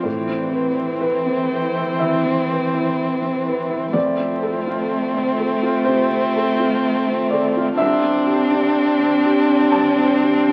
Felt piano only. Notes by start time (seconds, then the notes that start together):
0.03 A2
0.28 C4
0.53 B4
0.77 E4
1.01 B4
1.26 C4
1.52 B4
1.76 E4
1.99 E3 E5
2.25 C4
2.50 B4
2.74 E4
3.22 C4
3.46 B4
3.70 E4
3.93 F2 D5
4.19 C4
4.43 A4
4.67 F4
5.15 C4
5.39 A4
5.63 F4
5.85 C3 C5
6.11 C4
6.36 A4
6.60 F4
7.08 C4
7.30 A4 D5
7.57 F4
7.77 C2 E5
8.03 C4
8.27 G4
8.51 D4
9.00 C4
9.25 G4
9.50 D4
9.72 G2 A5
9.99 C4
10.24 G4
10.48 D4